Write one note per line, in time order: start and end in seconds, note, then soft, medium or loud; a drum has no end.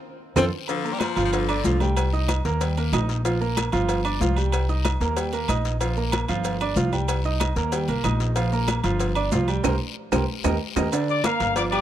0.36 0.49 F2 loud
0.36 0.45 C4 loud
0.36 0.47 F4 loud
0.36 0.47 A4 loud
0.36 0.47 C5 loud
0.36 cowbell loud
0.36 low conga loud
0.36 high timbale loud
0.36 long guiro loud
0.36 claves loud
0.36 maracas loud
0.68 0.95 D3 loud
0.68 0.82 F3 medium
0.68 0.82 F4 medium
0.68 0.82 F5 medium
0.68 cowbell loud
0.68 high conga soft
0.68 low agogo medium
0.68 long guiro medium
0.68 maracas medium
0.85 1.11 A#3 medium
0.85 1.11 A#4 medium
0.85 1.11 A#5 medium
0.85 high conga soft
0.85 maracas soft
0.94 1.01 G3 loud
1.00 1.24 F3 loud
1.00 cowbell medium
1.00 high conga medium
1.00 low agogo loud
1.00 short guiro medium
1.00 claves medium
1.00 maracas medium
1.16 1.61 G1 medium
1.16 1.43 F3 medium
1.16 1.43 F4 loud
1.16 1.43 F5 medium
1.16 cowbell medium
1.16 high conga soft
1.16 low agogo medium
1.16 short guiro medium
1.16 maracas soft
1.25 1.29 F3 medium
1.33 1.93 D3 medium
1.33 cowbell loud
1.33 high conga soft
1.33 low agogo medium
1.33 long guiro medium
1.33 maracas medium
1.49 1.62 D4 medium
1.49 1.62 D5 medium
1.49 1.62 D6 medium
1.49 high conga soft
1.49 low agogo loud
1.49 claves medium
1.49 maracas soft
1.64 2.39 C2 medium
1.64 1.78 F3 medium
1.64 1.78 F4 medium
1.64 1.79 F5 medium
1.64 cowbell medium
1.64 high conga loud
1.64 short guiro medium
1.64 maracas medium
1.80 2.07 G3 medium
1.80 2.07 G4 medium
1.80 2.08 G5 medium
1.80 high conga medium
1.80 low agogo medium
1.80 short guiro medium
1.80 maracas soft
1.97 cowbell loud
1.97 high conga soft
1.97 low agogo loud
1.97 long guiro medium
1.97 claves medium
1.97 maracas medium
2.13 2.39 D#4 medium
2.13 2.39 D#5 medium
2.13 2.40 D#6 medium
2.13 high conga soft
2.13 maracas soft
2.28 cowbell medium
2.28 high conga loud
2.28 low agogo loud
2.28 short guiro medium
2.28 claves medium
2.28 maracas medium
2.45 2.90 D#2 loud
2.45 2.58 A#3 medium
2.45 2.58 A#4 medium
2.45 2.58 A#5 medium
2.45 cowbell medium
2.45 short guiro medium
2.45 maracas soft
2.61 2.74 G3 medium
2.61 2.74 G4 medium
2.61 2.75 G5 medium
2.61 cowbell loud
2.61 high conga soft
2.61 low agogo medium
2.61 long guiro medium
2.61 maracas medium
2.77 2.90 A#3 medium
2.77 2.90 A#4 medium
2.77 2.91 A#5 medium
2.77 high conga soft
2.77 low agogo medium
2.77 maracas soft
2.92 3.67 A#1 loud
2.92 3.19 D#4 medium
2.92 3.19 D#5 medium
2.92 3.20 D#6 medium
2.92 cowbell medium
2.92 high conga loud
2.92 low timbale medium
2.92 low agogo loud
2.92 short guiro medium
2.92 claves medium
2.92 maracas medium
3.09 cowbell medium
3.09 high conga soft
3.09 short guiro medium
3.09 maracas soft
3.25 3.38 F3 medium
3.25 3.38 F4 medium
3.25 3.38 F5 medium
3.25 cowbell loud
3.25 high conga soft
3.25 low agogo medium
3.25 long guiro medium
3.25 maracas medium
3.41 3.67 A#3 medium
3.41 3.67 A#4 medium
3.41 3.67 A#5 medium
3.41 high conga soft
3.41 maracas soft
3.57 cowbell medium
3.57 high conga loud
3.57 low agogo loud
3.57 short guiro medium
3.57 claves medium
3.57 maracas medium
3.72 4.18 G1 loud
3.72 3.99 F3 medium
3.72 3.99 F4 medium
3.72 3.99 F5 loud
3.72 cowbell medium
3.72 high conga soft
3.72 low agogo medium
3.72 short guiro medium
3.72 maracas soft
3.89 cowbell loud
3.89 high conga soft
3.89 low agogo medium
3.89 long guiro medium
3.89 maracas medium
4.05 4.18 D4 medium
4.05 4.18 D5 medium
4.05 4.18 D6 medium
4.05 high conga soft
4.05 low agogo loud
4.05 claves medium
4.05 maracas soft
4.21 4.95 C2 loud
4.21 4.34 F3 medium
4.21 4.34 F4 medium
4.21 4.34 F5 medium
4.21 cowbell medium
4.21 high conga loud
4.21 short guiro medium
4.21 maracas medium
4.37 4.63 G3 medium
4.37 4.64 G4 medium
4.37 4.64 G5 medium
4.37 low agogo medium
4.37 short guiro medium
4.37 maracas soft
4.52 cowbell loud
4.52 high conga soft
4.52 low agogo loud
4.52 long guiro medium
4.52 claves medium
4.52 maracas medium
4.69 4.95 D#4 medium
4.69 4.95 D#5 medium
4.69 4.95 D#6 medium
4.69 high conga soft
4.69 maracas soft
4.85 cowbell medium
4.85 high conga loud
4.85 low agogo loud
4.85 short guiro medium
4.85 claves medium
4.85 maracas medium
5.00 5.45 D#2 medium
5.00 5.14 A#3 medium
5.00 5.14 A#4 medium
5.00 5.14 A#5 medium
5.00 cowbell medium
5.00 short guiro medium
5.00 maracas soft
5.16 5.30 G3 medium
5.16 5.30 G4 medium
5.16 5.30 G5 medium
5.16 cowbell loud
5.16 high conga soft
5.16 low agogo medium
5.16 long guiro medium
5.16 maracas medium
5.33 5.46 A#3 medium
5.33 5.46 A#4 medium
5.33 5.46 A#5 medium
5.33 high conga soft
5.33 low agogo medium
5.33 maracas soft
5.48 6.23 A#1 medium
5.48 5.75 D#4 medium
5.48 5.75 D#5 medium
5.48 5.76 D#6 medium
5.48 cowbell medium
5.48 high conga medium
5.48 low agogo loud
5.48 short guiro medium
5.48 claves medium
5.48 maracas medium
5.65 cowbell medium
5.65 high conga soft
5.65 short guiro medium
5.65 maracas soft
5.81 5.94 F3 medium
5.81 5.94 F4 medium
5.81 5.95 F5 medium
5.81 cowbell loud
5.81 high conga soft
5.81 low agogo medium
5.81 long guiro medium
5.81 maracas medium
5.97 6.23 A#3 medium
5.97 6.23 A#4 medium
5.97 6.23 A#5 medium
5.97 high conga soft
5.97 maracas soft
6.12 cowbell medium
6.12 high conga loud
6.12 low agogo loud
6.12 short guiro medium
6.12 claves medium
6.12 maracas medium
6.28 6.73 G1 medium
6.28 6.55 F3 loud
6.28 6.55 F4 medium
6.28 6.55 F5 medium
6.28 cowbell medium
6.28 high conga soft
6.28 low agogo medium
6.28 short guiro medium
6.28 maracas soft
6.44 cowbell loud
6.44 high conga soft
6.44 low agogo medium
6.44 long guiro medium
6.44 maracas medium
6.60 6.74 D4 medium
6.60 6.74 D5 medium
6.60 6.74 D6 medium
6.60 high conga soft
6.60 low agogo loud
6.60 claves medium
6.60 maracas soft
6.76 7.51 C2 medium
6.76 6.90 F3 medium
6.76 6.90 F4 medium
6.76 6.90 F5 medium
6.76 cowbell medium
6.76 high conga loud
6.76 short guiro medium
6.76 maracas medium
6.93 7.19 G3 medium
6.93 7.19 G4 medium
6.93 7.19 G5 medium
6.93 high conga medium
6.93 low agogo medium
6.93 short guiro medium
6.93 maracas soft
7.08 cowbell loud
7.08 high conga soft
7.08 low agogo loud
7.08 long guiro medium
7.08 claves medium
7.08 maracas medium
7.24 7.51 D#4 medium
7.24 7.51 D#5 medium
7.24 7.51 D#6 medium
7.24 high conga soft
7.24 maracas soft
7.40 cowbell medium
7.40 high conga loud
7.40 low agogo loud
7.40 short guiro medium
7.40 claves medium
7.40 maracas medium
7.56 7.86 D#2 loud
7.56 7.70 A#3 medium
7.56 7.70 A#4 medium
7.56 7.70 A#5 medium
7.56 cowbell medium
7.56 short guiro medium
7.56 maracas soft
7.72 7.86 G3 medium
7.72 7.86 G4 medium
7.72 7.86 G5 medium
7.72 cowbell loud
7.72 high conga soft
7.72 low agogo medium
7.72 long guiro medium
7.72 maracas medium
7.88 8.03 C2 medium
7.88 8.02 A#3 medium
7.88 8.02 A#4 medium
7.88 8.02 A#5 medium
7.88 high conga soft
7.88 low agogo medium
7.88 maracas soft
8.04 8.79 A#1 medium
8.04 8.31 D#4 medium
8.04 8.31 D#5 medium
8.04 8.31 D#6 medium
8.04 cowbell medium
8.04 high conga loud
8.04 low agogo loud
8.04 short guiro medium
8.04 claves medium
8.04 maracas medium
8.20 cowbell medium
8.20 high conga soft
8.20 short guiro medium
8.20 maracas soft
8.36 8.50 F3 medium
8.36 8.50 F4 medium
8.36 8.50 F5 medium
8.36 cowbell loud
8.36 high conga soft
8.36 low agogo medium
8.36 long guiro medium
8.36 maracas medium
8.52 8.78 A#3 medium
8.52 8.79 A#4 medium
8.52 8.79 A#5 medium
8.52 high conga soft
8.52 maracas soft
8.68 cowbell medium
8.68 high conga medium
8.68 low agogo loud
8.68 short guiro medium
8.68 claves medium
8.68 maracas medium
8.84 9.29 G1 loud
8.84 9.10 F3 loud
8.84 9.11 F4 medium
8.84 9.11 F5 medium
8.84 cowbell medium
8.84 high conga soft
8.84 low agogo medium
8.84 short guiro medium
8.84 maracas soft
8.99 cowbell loud
8.99 high conga soft
8.99 low agogo medium
8.99 long guiro medium
8.99 maracas medium
9.15 9.29 D4 medium
9.15 9.29 D5 medium
9.15 9.30 D6 medium
9.15 high conga soft
9.15 low agogo loud
9.15 claves medium
9.15 maracas soft
9.32 9.62 C2 medium
9.32 9.45 F3 medium
9.32 9.45 F4 medium
9.32 9.46 F5 medium
9.32 cowbell medium
9.32 high conga loud
9.32 low timbale medium
9.32 short guiro medium
9.32 maracas medium
9.48 9.61 G3 medium
9.48 9.62 G4 medium
9.48 9.62 G5 medium
9.48 low agogo loud
9.48 short guiro medium
9.48 maracas soft
9.64 9.76 C2 medium
9.64 9.74 G4 loud
9.64 9.74 A#4 loud
9.64 9.74 C5 loud
9.64 cowbell loud
9.64 high conga loud
9.64 high timbale loud
9.64 long guiro loud
9.64 claves loud
9.64 maracas loud
10.12 10.24 C2 medium
10.12 10.22 G4 loud
10.12 10.22 A#4 loud
10.12 10.22 C5 medium
10.12 cowbell loud
10.12 high conga loud
10.12 high timbale loud
10.12 long guiro loud
10.12 claves loud
10.12 maracas loud
10.44 10.56 D#2 loud
10.44 10.55 G4 loud
10.44 10.55 A#4 loud
10.44 10.55 D#5 loud
10.44 cowbell loud
10.44 high conga loud
10.44 high timbale loud
10.44 long guiro loud
10.44 claves loud
10.44 maracas loud
10.76 10.88 D#2 loud
10.76 10.87 G4 medium
10.76 10.87 A#4 loud
10.76 10.87 D#5 loud
10.76 cowbell loud
10.76 high conga loud
10.76 high timbale loud
10.76 claves medium
10.76 maracas medium
10.92 11.19 D3 medium
10.92 11.19 D4 loud
10.92 11.19 D5 medium
10.92 cowbell loud
10.92 high conga soft
10.92 low agogo medium
10.92 long guiro medium
10.92 maracas medium
11.08 11.24 D5 loud
11.08 11.24 D6 medium
11.08 high conga soft
11.08 maracas soft
11.24 11.51 A#3 medium
11.24 11.51 A#4 medium
11.24 11.57 F5 loud
11.24 11.51 A#5 medium
11.24 cowbell medium
11.24 high conga loud
11.24 low agogo loud
11.24 short guiro medium
11.24 claves medium
11.24 maracas medium
11.40 11.81 G1 medium
11.40 cowbell medium
11.40 high conga soft
11.40 low agogo medium
11.40 short guiro medium
11.40 maracas soft
11.56 11.69 F3 medium
11.56 11.69 F4 medium
11.56 11.64 D5 loud
11.56 11.70 F5 medium
11.56 11.65 D6 medium
11.56 cowbell loud
11.56 high conga soft
11.56 low agogo medium
11.56 long guiro medium
11.56 maracas medium
11.72 11.81 G3 medium
11.72 11.81 G4 medium
11.72 11.81 D5 loud
11.72 11.81 G5 medium
11.72 11.81 D6 medium
11.72 high conga soft
11.72 low agogo loud
11.72 claves medium
11.72 maracas soft